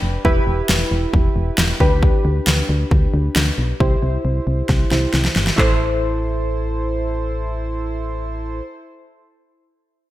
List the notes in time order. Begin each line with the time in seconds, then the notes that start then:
Already playing: D4 G4 B4
0.03 F1
0.25 E1 E4 G4 B4, kick
0.47 E1
0.69 E1, snare
0.91 E1
1.14 E1, kick
1.36 E1
1.58 E1, snare
1.80 D2 D4 G4 B4, kick
2.03 kick
2.25 D2
2.47 D2, snare
2.69 D2
2.91 D2, kick
3.14 D2
3.36 D2, snare
3.58 B1
3.80 C2 E4 G4 C5, kick
4.03 C2
4.25 C2
4.47 C2
4.69 C2, kick, snare
4.91 C2 E4 G4 C5, snare
5.14 C2, snare
5.25 snare
5.36 G1, snare
5.47 snare
5.56 A1 E4 A4, kick, clap
5.60 C5